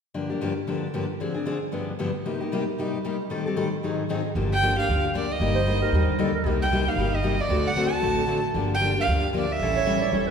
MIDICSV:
0, 0, Header, 1, 5, 480
1, 0, Start_track
1, 0, Key_signature, -2, "minor"
1, 0, Tempo, 262582
1, 269, Time_signature, 4, 2, 24, 8
1, 18839, End_track
2, 0, Start_track
2, 0, Title_t, "Violin"
2, 0, Program_c, 0, 40
2, 8286, Note_on_c, 0, 79, 101
2, 8711, Note_off_c, 0, 79, 0
2, 8763, Note_on_c, 0, 77, 90
2, 9189, Note_off_c, 0, 77, 0
2, 9432, Note_on_c, 0, 74, 79
2, 9725, Note_on_c, 0, 75, 83
2, 9753, Note_off_c, 0, 74, 0
2, 11140, Note_off_c, 0, 75, 0
2, 12106, Note_on_c, 0, 79, 85
2, 12585, Note_on_c, 0, 77, 86
2, 12613, Note_off_c, 0, 79, 0
2, 13073, Note_on_c, 0, 75, 84
2, 13101, Note_off_c, 0, 77, 0
2, 13535, Note_on_c, 0, 74, 93
2, 13563, Note_off_c, 0, 75, 0
2, 14031, Note_on_c, 0, 78, 89
2, 14059, Note_off_c, 0, 74, 0
2, 14492, Note_on_c, 0, 81, 92
2, 14520, Note_off_c, 0, 78, 0
2, 15442, Note_off_c, 0, 81, 0
2, 15990, Note_on_c, 0, 79, 97
2, 16400, Note_off_c, 0, 79, 0
2, 16460, Note_on_c, 0, 77, 88
2, 16874, Note_off_c, 0, 77, 0
2, 17138, Note_on_c, 0, 74, 77
2, 17405, Note_on_c, 0, 76, 91
2, 17433, Note_off_c, 0, 74, 0
2, 18817, Note_off_c, 0, 76, 0
2, 18839, End_track
3, 0, Start_track
3, 0, Title_t, "Clarinet"
3, 0, Program_c, 1, 71
3, 10143, Note_on_c, 1, 72, 93
3, 10596, Note_off_c, 1, 72, 0
3, 10638, Note_on_c, 1, 70, 83
3, 11330, Note_on_c, 1, 69, 82
3, 11357, Note_off_c, 1, 70, 0
3, 11591, Note_off_c, 1, 69, 0
3, 11602, Note_on_c, 1, 70, 67
3, 11916, Note_off_c, 1, 70, 0
3, 17846, Note_on_c, 1, 73, 94
3, 18294, Note_on_c, 1, 74, 86
3, 18322, Note_off_c, 1, 73, 0
3, 18495, Note_on_c, 1, 73, 93
3, 18522, Note_off_c, 1, 74, 0
3, 18782, Note_on_c, 1, 71, 75
3, 18809, Note_off_c, 1, 73, 0
3, 18839, Note_off_c, 1, 71, 0
3, 18839, End_track
4, 0, Start_track
4, 0, Title_t, "Steel-string acoustic guitar"
4, 0, Program_c, 2, 25
4, 262, Note_on_c, 2, 43, 50
4, 262, Note_on_c, 2, 50, 60
4, 264, Note_on_c, 2, 62, 59
4, 266, Note_on_c, 2, 53, 51
4, 271, Note_on_c, 2, 67, 60
4, 272, Note_on_c, 2, 58, 57
4, 517, Note_off_c, 2, 67, 0
4, 530, Note_off_c, 2, 62, 0
4, 534, Note_off_c, 2, 43, 0
4, 534, Note_off_c, 2, 50, 0
4, 536, Note_off_c, 2, 53, 0
4, 539, Note_off_c, 2, 58, 0
4, 539, Note_on_c, 2, 67, 51
4, 552, Note_on_c, 2, 62, 47
4, 571, Note_on_c, 2, 58, 43
4, 584, Note_on_c, 2, 53, 42
4, 734, Note_off_c, 2, 53, 0
4, 739, Note_off_c, 2, 67, 0
4, 745, Note_off_c, 2, 58, 0
4, 745, Note_off_c, 2, 62, 0
4, 747, Note_on_c, 2, 43, 68
4, 756, Note_on_c, 2, 53, 73
4, 758, Note_on_c, 2, 50, 74
4, 766, Note_on_c, 2, 62, 71
4, 767, Note_on_c, 2, 58, 84
4, 775, Note_on_c, 2, 67, 74
4, 940, Note_off_c, 2, 43, 0
4, 945, Note_off_c, 2, 53, 0
4, 946, Note_off_c, 2, 50, 0
4, 950, Note_off_c, 2, 58, 0
4, 950, Note_off_c, 2, 62, 0
4, 954, Note_off_c, 2, 67, 0
4, 1226, Note_on_c, 2, 43, 62
4, 1233, Note_on_c, 2, 50, 62
4, 1234, Note_on_c, 2, 53, 61
4, 1248, Note_on_c, 2, 58, 60
4, 1248, Note_on_c, 2, 62, 62
4, 1256, Note_on_c, 2, 67, 65
4, 1568, Note_off_c, 2, 43, 0
4, 1572, Note_off_c, 2, 50, 0
4, 1572, Note_off_c, 2, 53, 0
4, 1579, Note_off_c, 2, 58, 0
4, 1579, Note_off_c, 2, 62, 0
4, 1583, Note_off_c, 2, 67, 0
4, 1711, Note_on_c, 2, 50, 67
4, 1712, Note_on_c, 2, 53, 70
4, 1717, Note_on_c, 2, 43, 67
4, 1721, Note_on_c, 2, 58, 70
4, 1724, Note_on_c, 2, 62, 72
4, 1731, Note_on_c, 2, 67, 71
4, 1904, Note_off_c, 2, 50, 0
4, 1905, Note_off_c, 2, 53, 0
4, 1907, Note_off_c, 2, 43, 0
4, 1910, Note_off_c, 2, 58, 0
4, 1910, Note_off_c, 2, 62, 0
4, 1914, Note_off_c, 2, 67, 0
4, 2195, Note_on_c, 2, 50, 59
4, 2201, Note_on_c, 2, 53, 56
4, 2211, Note_on_c, 2, 60, 56
4, 2212, Note_on_c, 2, 68, 63
4, 2215, Note_on_c, 2, 62, 61
4, 2433, Note_off_c, 2, 68, 0
4, 2455, Note_off_c, 2, 62, 0
4, 2455, Note_on_c, 2, 68, 55
4, 2464, Note_off_c, 2, 50, 0
4, 2467, Note_off_c, 2, 53, 0
4, 2468, Note_off_c, 2, 60, 0
4, 2477, Note_on_c, 2, 62, 48
4, 2490, Note_on_c, 2, 60, 45
4, 2652, Note_off_c, 2, 60, 0
4, 2654, Note_off_c, 2, 62, 0
4, 2660, Note_off_c, 2, 68, 0
4, 2660, Note_on_c, 2, 50, 70
4, 2674, Note_on_c, 2, 60, 80
4, 2676, Note_on_c, 2, 62, 73
4, 2677, Note_on_c, 2, 53, 64
4, 2684, Note_on_c, 2, 68, 83
4, 2860, Note_off_c, 2, 50, 0
4, 2867, Note_off_c, 2, 60, 0
4, 2868, Note_off_c, 2, 53, 0
4, 2868, Note_off_c, 2, 62, 0
4, 2872, Note_off_c, 2, 68, 0
4, 3139, Note_on_c, 2, 43, 59
4, 3145, Note_on_c, 2, 50, 62
4, 3152, Note_on_c, 2, 59, 64
4, 3159, Note_on_c, 2, 53, 62
4, 3167, Note_on_c, 2, 67, 61
4, 3170, Note_on_c, 2, 62, 65
4, 3487, Note_off_c, 2, 43, 0
4, 3490, Note_off_c, 2, 50, 0
4, 3494, Note_off_c, 2, 59, 0
4, 3498, Note_off_c, 2, 53, 0
4, 3502, Note_off_c, 2, 67, 0
4, 3503, Note_off_c, 2, 62, 0
4, 3634, Note_on_c, 2, 43, 76
4, 3641, Note_on_c, 2, 53, 76
4, 3644, Note_on_c, 2, 50, 70
4, 3649, Note_on_c, 2, 59, 73
4, 3649, Note_on_c, 2, 67, 76
4, 3650, Note_on_c, 2, 62, 75
4, 3828, Note_off_c, 2, 43, 0
4, 3832, Note_off_c, 2, 53, 0
4, 3833, Note_off_c, 2, 50, 0
4, 3836, Note_off_c, 2, 59, 0
4, 3836, Note_off_c, 2, 62, 0
4, 3836, Note_off_c, 2, 67, 0
4, 4117, Note_on_c, 2, 48, 57
4, 4125, Note_on_c, 2, 58, 58
4, 4125, Note_on_c, 2, 63, 63
4, 4127, Note_on_c, 2, 55, 55
4, 4134, Note_on_c, 2, 67, 68
4, 4376, Note_off_c, 2, 67, 0
4, 4387, Note_off_c, 2, 48, 0
4, 4391, Note_off_c, 2, 58, 0
4, 4391, Note_off_c, 2, 63, 0
4, 4392, Note_off_c, 2, 55, 0
4, 4398, Note_on_c, 2, 67, 57
4, 4425, Note_on_c, 2, 63, 44
4, 4437, Note_on_c, 2, 58, 42
4, 4594, Note_off_c, 2, 67, 0
4, 4599, Note_off_c, 2, 63, 0
4, 4600, Note_off_c, 2, 58, 0
4, 4605, Note_on_c, 2, 48, 73
4, 4613, Note_on_c, 2, 55, 72
4, 4621, Note_on_c, 2, 63, 88
4, 4622, Note_on_c, 2, 58, 78
4, 4634, Note_on_c, 2, 67, 81
4, 4794, Note_off_c, 2, 48, 0
4, 4799, Note_off_c, 2, 55, 0
4, 4803, Note_off_c, 2, 58, 0
4, 4803, Note_off_c, 2, 63, 0
4, 4809, Note_off_c, 2, 67, 0
4, 5089, Note_on_c, 2, 48, 57
4, 5096, Note_on_c, 2, 55, 61
4, 5108, Note_on_c, 2, 58, 62
4, 5110, Note_on_c, 2, 63, 67
4, 5112, Note_on_c, 2, 67, 72
4, 5424, Note_off_c, 2, 48, 0
4, 5427, Note_off_c, 2, 55, 0
4, 5433, Note_off_c, 2, 58, 0
4, 5434, Note_off_c, 2, 63, 0
4, 5435, Note_off_c, 2, 67, 0
4, 5566, Note_on_c, 2, 48, 67
4, 5567, Note_on_c, 2, 58, 73
4, 5570, Note_on_c, 2, 55, 74
4, 5580, Note_on_c, 2, 63, 68
4, 5592, Note_on_c, 2, 67, 75
4, 5755, Note_off_c, 2, 48, 0
4, 5756, Note_off_c, 2, 58, 0
4, 5758, Note_off_c, 2, 55, 0
4, 5763, Note_off_c, 2, 63, 0
4, 5768, Note_off_c, 2, 67, 0
4, 6027, Note_on_c, 2, 45, 58
4, 6034, Note_on_c, 2, 51, 63
4, 6035, Note_on_c, 2, 55, 62
4, 6048, Note_on_c, 2, 67, 63
4, 6053, Note_on_c, 2, 60, 54
4, 6053, Note_on_c, 2, 69, 68
4, 6300, Note_off_c, 2, 69, 0
4, 6303, Note_off_c, 2, 45, 0
4, 6306, Note_off_c, 2, 51, 0
4, 6307, Note_off_c, 2, 55, 0
4, 6314, Note_off_c, 2, 67, 0
4, 6316, Note_off_c, 2, 60, 0
4, 6322, Note_on_c, 2, 69, 50
4, 6349, Note_on_c, 2, 67, 51
4, 6355, Note_on_c, 2, 60, 46
4, 6362, Note_on_c, 2, 55, 48
4, 6499, Note_off_c, 2, 55, 0
4, 6502, Note_off_c, 2, 69, 0
4, 6507, Note_off_c, 2, 60, 0
4, 6508, Note_off_c, 2, 67, 0
4, 6512, Note_on_c, 2, 45, 64
4, 6516, Note_on_c, 2, 51, 82
4, 6521, Note_on_c, 2, 55, 77
4, 6524, Note_on_c, 2, 69, 90
4, 6529, Note_on_c, 2, 60, 80
4, 6530, Note_on_c, 2, 67, 83
4, 6709, Note_off_c, 2, 45, 0
4, 6711, Note_off_c, 2, 51, 0
4, 6713, Note_off_c, 2, 55, 0
4, 6715, Note_off_c, 2, 69, 0
4, 6717, Note_off_c, 2, 60, 0
4, 6718, Note_off_c, 2, 67, 0
4, 7004, Note_on_c, 2, 44, 54
4, 7014, Note_on_c, 2, 60, 62
4, 7020, Note_on_c, 2, 51, 62
4, 7022, Note_on_c, 2, 54, 58
4, 7024, Note_on_c, 2, 63, 64
4, 7033, Note_on_c, 2, 68, 67
4, 7341, Note_off_c, 2, 44, 0
4, 7346, Note_off_c, 2, 60, 0
4, 7349, Note_off_c, 2, 51, 0
4, 7350, Note_off_c, 2, 54, 0
4, 7351, Note_off_c, 2, 63, 0
4, 7356, Note_off_c, 2, 68, 0
4, 7477, Note_on_c, 2, 44, 69
4, 7490, Note_on_c, 2, 51, 76
4, 7493, Note_on_c, 2, 54, 73
4, 7493, Note_on_c, 2, 60, 76
4, 7498, Note_on_c, 2, 68, 80
4, 7503, Note_on_c, 2, 63, 72
4, 7671, Note_off_c, 2, 44, 0
4, 7677, Note_off_c, 2, 51, 0
4, 7679, Note_off_c, 2, 54, 0
4, 7679, Note_off_c, 2, 60, 0
4, 7681, Note_off_c, 2, 68, 0
4, 7684, Note_off_c, 2, 63, 0
4, 7965, Note_on_c, 2, 53, 63
4, 7967, Note_on_c, 2, 50, 65
4, 7974, Note_on_c, 2, 58, 57
4, 7976, Note_on_c, 2, 62, 61
4, 7989, Note_on_c, 2, 67, 62
4, 8301, Note_off_c, 2, 53, 0
4, 8302, Note_off_c, 2, 50, 0
4, 8306, Note_off_c, 2, 58, 0
4, 8307, Note_off_c, 2, 62, 0
4, 8313, Note_off_c, 2, 67, 0
4, 8447, Note_on_c, 2, 50, 74
4, 8460, Note_on_c, 2, 53, 71
4, 8460, Note_on_c, 2, 58, 80
4, 8471, Note_on_c, 2, 67, 83
4, 8472, Note_on_c, 2, 62, 84
4, 8635, Note_off_c, 2, 50, 0
4, 8642, Note_off_c, 2, 53, 0
4, 8642, Note_off_c, 2, 58, 0
4, 8647, Note_off_c, 2, 67, 0
4, 8648, Note_off_c, 2, 62, 0
4, 8708, Note_on_c, 2, 67, 60
4, 8742, Note_on_c, 2, 62, 47
4, 8757, Note_on_c, 2, 58, 43
4, 8909, Note_off_c, 2, 67, 0
4, 8925, Note_off_c, 2, 62, 0
4, 8933, Note_off_c, 2, 58, 0
4, 8936, Note_on_c, 2, 50, 59
4, 8944, Note_on_c, 2, 53, 64
4, 8952, Note_on_c, 2, 62, 66
4, 8959, Note_on_c, 2, 58, 60
4, 8966, Note_on_c, 2, 67, 66
4, 9266, Note_off_c, 2, 50, 0
4, 9270, Note_off_c, 2, 53, 0
4, 9274, Note_off_c, 2, 62, 0
4, 9278, Note_off_c, 2, 58, 0
4, 9281, Note_off_c, 2, 67, 0
4, 9392, Note_on_c, 2, 50, 74
4, 9412, Note_on_c, 2, 53, 78
4, 9416, Note_on_c, 2, 58, 75
4, 9416, Note_on_c, 2, 62, 87
4, 9426, Note_on_c, 2, 67, 79
4, 9587, Note_off_c, 2, 50, 0
4, 9597, Note_off_c, 2, 53, 0
4, 9599, Note_off_c, 2, 58, 0
4, 9599, Note_off_c, 2, 62, 0
4, 9604, Note_off_c, 2, 67, 0
4, 9869, Note_on_c, 2, 50, 65
4, 9881, Note_on_c, 2, 55, 63
4, 9884, Note_on_c, 2, 58, 69
4, 9894, Note_on_c, 2, 63, 62
4, 9896, Note_on_c, 2, 67, 74
4, 10212, Note_off_c, 2, 50, 0
4, 10218, Note_off_c, 2, 55, 0
4, 10219, Note_off_c, 2, 58, 0
4, 10225, Note_off_c, 2, 63, 0
4, 10226, Note_off_c, 2, 67, 0
4, 10349, Note_on_c, 2, 50, 76
4, 10352, Note_on_c, 2, 55, 75
4, 10366, Note_on_c, 2, 58, 79
4, 10368, Note_on_c, 2, 63, 78
4, 10370, Note_on_c, 2, 67, 75
4, 10545, Note_off_c, 2, 50, 0
4, 10546, Note_off_c, 2, 55, 0
4, 10554, Note_off_c, 2, 58, 0
4, 10554, Note_off_c, 2, 63, 0
4, 10556, Note_off_c, 2, 67, 0
4, 10635, Note_on_c, 2, 67, 51
4, 10645, Note_on_c, 2, 63, 51
4, 10667, Note_on_c, 2, 58, 50
4, 10830, Note_off_c, 2, 67, 0
4, 10835, Note_off_c, 2, 63, 0
4, 10847, Note_off_c, 2, 58, 0
4, 10859, Note_on_c, 2, 50, 60
4, 10868, Note_on_c, 2, 55, 65
4, 10872, Note_on_c, 2, 58, 61
4, 10872, Note_on_c, 2, 63, 61
4, 10876, Note_on_c, 2, 67, 69
4, 11186, Note_off_c, 2, 50, 0
4, 11190, Note_off_c, 2, 55, 0
4, 11193, Note_off_c, 2, 58, 0
4, 11193, Note_off_c, 2, 63, 0
4, 11195, Note_off_c, 2, 67, 0
4, 11305, Note_on_c, 2, 50, 76
4, 11309, Note_on_c, 2, 55, 80
4, 11317, Note_on_c, 2, 63, 74
4, 11318, Note_on_c, 2, 58, 79
4, 11320, Note_on_c, 2, 67, 91
4, 11502, Note_off_c, 2, 50, 0
4, 11504, Note_off_c, 2, 55, 0
4, 11508, Note_off_c, 2, 63, 0
4, 11509, Note_off_c, 2, 58, 0
4, 11510, Note_off_c, 2, 67, 0
4, 11797, Note_on_c, 2, 48, 61
4, 11811, Note_on_c, 2, 58, 66
4, 11813, Note_on_c, 2, 55, 62
4, 11817, Note_on_c, 2, 67, 73
4, 11818, Note_on_c, 2, 63, 76
4, 12135, Note_off_c, 2, 48, 0
4, 12142, Note_off_c, 2, 55, 0
4, 12142, Note_off_c, 2, 58, 0
4, 12145, Note_off_c, 2, 63, 0
4, 12145, Note_off_c, 2, 67, 0
4, 12287, Note_on_c, 2, 48, 77
4, 12291, Note_on_c, 2, 55, 83
4, 12302, Note_on_c, 2, 58, 80
4, 12304, Note_on_c, 2, 63, 82
4, 12315, Note_on_c, 2, 67, 92
4, 12473, Note_off_c, 2, 48, 0
4, 12474, Note_off_c, 2, 55, 0
4, 12480, Note_off_c, 2, 58, 0
4, 12481, Note_off_c, 2, 63, 0
4, 12487, Note_off_c, 2, 67, 0
4, 12555, Note_on_c, 2, 67, 56
4, 12570, Note_on_c, 2, 63, 47
4, 12592, Note_on_c, 2, 58, 47
4, 12749, Note_off_c, 2, 58, 0
4, 12749, Note_off_c, 2, 67, 0
4, 12757, Note_off_c, 2, 63, 0
4, 12758, Note_on_c, 2, 55, 62
4, 12765, Note_on_c, 2, 48, 57
4, 12771, Note_on_c, 2, 58, 71
4, 12777, Note_on_c, 2, 63, 68
4, 12792, Note_on_c, 2, 67, 77
4, 13094, Note_off_c, 2, 55, 0
4, 13098, Note_off_c, 2, 48, 0
4, 13101, Note_off_c, 2, 58, 0
4, 13104, Note_off_c, 2, 63, 0
4, 13111, Note_off_c, 2, 67, 0
4, 13210, Note_on_c, 2, 48, 73
4, 13222, Note_on_c, 2, 58, 80
4, 13225, Note_on_c, 2, 55, 73
4, 13236, Note_on_c, 2, 67, 82
4, 13237, Note_on_c, 2, 63, 73
4, 13413, Note_off_c, 2, 48, 0
4, 13419, Note_off_c, 2, 58, 0
4, 13421, Note_off_c, 2, 55, 0
4, 13426, Note_off_c, 2, 67, 0
4, 13427, Note_off_c, 2, 63, 0
4, 13707, Note_on_c, 2, 50, 59
4, 13710, Note_on_c, 2, 57, 63
4, 13714, Note_on_c, 2, 60, 74
4, 13720, Note_on_c, 2, 66, 58
4, 13722, Note_on_c, 2, 69, 64
4, 14048, Note_off_c, 2, 50, 0
4, 14050, Note_off_c, 2, 57, 0
4, 14052, Note_off_c, 2, 60, 0
4, 14055, Note_off_c, 2, 66, 0
4, 14055, Note_off_c, 2, 69, 0
4, 14183, Note_on_c, 2, 50, 78
4, 14186, Note_on_c, 2, 57, 80
4, 14187, Note_on_c, 2, 66, 87
4, 14191, Note_on_c, 2, 69, 84
4, 14200, Note_on_c, 2, 60, 84
4, 14379, Note_off_c, 2, 50, 0
4, 14381, Note_off_c, 2, 57, 0
4, 14382, Note_off_c, 2, 66, 0
4, 14383, Note_off_c, 2, 69, 0
4, 14388, Note_off_c, 2, 60, 0
4, 14479, Note_on_c, 2, 69, 56
4, 14485, Note_on_c, 2, 66, 49
4, 14510, Note_on_c, 2, 60, 47
4, 14642, Note_off_c, 2, 60, 0
4, 14650, Note_off_c, 2, 69, 0
4, 14651, Note_off_c, 2, 66, 0
4, 14655, Note_on_c, 2, 50, 65
4, 14664, Note_on_c, 2, 60, 59
4, 14665, Note_on_c, 2, 57, 68
4, 14672, Note_on_c, 2, 69, 64
4, 14673, Note_on_c, 2, 66, 59
4, 15002, Note_off_c, 2, 50, 0
4, 15006, Note_off_c, 2, 60, 0
4, 15007, Note_off_c, 2, 57, 0
4, 15010, Note_off_c, 2, 69, 0
4, 15011, Note_off_c, 2, 66, 0
4, 15121, Note_on_c, 2, 50, 74
4, 15129, Note_on_c, 2, 57, 70
4, 15134, Note_on_c, 2, 66, 69
4, 15136, Note_on_c, 2, 60, 80
4, 15145, Note_on_c, 2, 69, 69
4, 15328, Note_off_c, 2, 50, 0
4, 15332, Note_off_c, 2, 57, 0
4, 15334, Note_off_c, 2, 66, 0
4, 15335, Note_off_c, 2, 60, 0
4, 15340, Note_off_c, 2, 69, 0
4, 15615, Note_on_c, 2, 50, 66
4, 15627, Note_on_c, 2, 53, 65
4, 15641, Note_on_c, 2, 58, 63
4, 15644, Note_on_c, 2, 62, 73
4, 15650, Note_on_c, 2, 67, 63
4, 15961, Note_off_c, 2, 50, 0
4, 15967, Note_off_c, 2, 53, 0
4, 15974, Note_off_c, 2, 58, 0
4, 15976, Note_off_c, 2, 62, 0
4, 15979, Note_off_c, 2, 67, 0
4, 16091, Note_on_c, 2, 50, 68
4, 16093, Note_on_c, 2, 53, 73
4, 16098, Note_on_c, 2, 58, 76
4, 16105, Note_on_c, 2, 67, 90
4, 16110, Note_on_c, 2, 62, 86
4, 16292, Note_off_c, 2, 50, 0
4, 16293, Note_off_c, 2, 53, 0
4, 16296, Note_off_c, 2, 58, 0
4, 16299, Note_off_c, 2, 67, 0
4, 16302, Note_off_c, 2, 62, 0
4, 16369, Note_on_c, 2, 67, 55
4, 16397, Note_on_c, 2, 62, 46
4, 16407, Note_on_c, 2, 58, 42
4, 16574, Note_off_c, 2, 67, 0
4, 16587, Note_on_c, 2, 50, 58
4, 16588, Note_off_c, 2, 62, 0
4, 16592, Note_off_c, 2, 58, 0
4, 16600, Note_on_c, 2, 53, 62
4, 16606, Note_on_c, 2, 62, 72
4, 16612, Note_on_c, 2, 58, 66
4, 16617, Note_on_c, 2, 67, 65
4, 16927, Note_off_c, 2, 50, 0
4, 16933, Note_off_c, 2, 53, 0
4, 16936, Note_off_c, 2, 62, 0
4, 16939, Note_off_c, 2, 58, 0
4, 16942, Note_off_c, 2, 67, 0
4, 17054, Note_on_c, 2, 50, 71
4, 17069, Note_on_c, 2, 53, 69
4, 17073, Note_on_c, 2, 58, 76
4, 17079, Note_on_c, 2, 62, 77
4, 17085, Note_on_c, 2, 67, 76
4, 17253, Note_off_c, 2, 50, 0
4, 17261, Note_off_c, 2, 53, 0
4, 17263, Note_off_c, 2, 58, 0
4, 17265, Note_off_c, 2, 62, 0
4, 17269, Note_off_c, 2, 67, 0
4, 17571, Note_on_c, 2, 55, 60
4, 17577, Note_on_c, 2, 52, 58
4, 17590, Note_on_c, 2, 64, 69
4, 17595, Note_on_c, 2, 61, 66
4, 17599, Note_on_c, 2, 69, 66
4, 17898, Note_off_c, 2, 55, 0
4, 17901, Note_off_c, 2, 52, 0
4, 17908, Note_off_c, 2, 64, 0
4, 17910, Note_off_c, 2, 61, 0
4, 17912, Note_off_c, 2, 69, 0
4, 18026, Note_on_c, 2, 55, 84
4, 18036, Note_on_c, 2, 52, 82
4, 18039, Note_on_c, 2, 61, 88
4, 18039, Note_on_c, 2, 64, 82
4, 18048, Note_on_c, 2, 69, 78
4, 18219, Note_off_c, 2, 55, 0
4, 18224, Note_off_c, 2, 52, 0
4, 18225, Note_off_c, 2, 64, 0
4, 18226, Note_off_c, 2, 61, 0
4, 18230, Note_off_c, 2, 69, 0
4, 18307, Note_on_c, 2, 69, 54
4, 18315, Note_on_c, 2, 64, 56
4, 18335, Note_on_c, 2, 61, 43
4, 18492, Note_off_c, 2, 61, 0
4, 18497, Note_off_c, 2, 69, 0
4, 18500, Note_off_c, 2, 64, 0
4, 18503, Note_on_c, 2, 52, 62
4, 18504, Note_on_c, 2, 55, 63
4, 18514, Note_on_c, 2, 61, 65
4, 18519, Note_on_c, 2, 69, 63
4, 18522, Note_on_c, 2, 64, 69
4, 18839, Note_off_c, 2, 52, 0
4, 18839, Note_off_c, 2, 55, 0
4, 18839, Note_off_c, 2, 61, 0
4, 18839, Note_off_c, 2, 64, 0
4, 18839, Note_off_c, 2, 69, 0
4, 18839, End_track
5, 0, Start_track
5, 0, Title_t, "Upright bass"
5, 0, Program_c, 3, 32
5, 7955, Note_on_c, 3, 31, 85
5, 8726, Note_off_c, 3, 31, 0
5, 8935, Note_on_c, 3, 38, 70
5, 9697, Note_off_c, 3, 38, 0
5, 9871, Note_on_c, 3, 31, 82
5, 10642, Note_off_c, 3, 31, 0
5, 10823, Note_on_c, 3, 39, 77
5, 11597, Note_off_c, 3, 39, 0
5, 11770, Note_on_c, 3, 36, 85
5, 12548, Note_off_c, 3, 36, 0
5, 12721, Note_on_c, 3, 31, 75
5, 13502, Note_off_c, 3, 31, 0
5, 13696, Note_on_c, 3, 38, 86
5, 14471, Note_off_c, 3, 38, 0
5, 14665, Note_on_c, 3, 33, 75
5, 15436, Note_off_c, 3, 33, 0
5, 15619, Note_on_c, 3, 31, 82
5, 16392, Note_off_c, 3, 31, 0
5, 16581, Note_on_c, 3, 38, 72
5, 17353, Note_off_c, 3, 38, 0
5, 17541, Note_on_c, 3, 33, 87
5, 18313, Note_off_c, 3, 33, 0
5, 18494, Note_on_c, 3, 28, 75
5, 18839, Note_off_c, 3, 28, 0
5, 18839, End_track
0, 0, End_of_file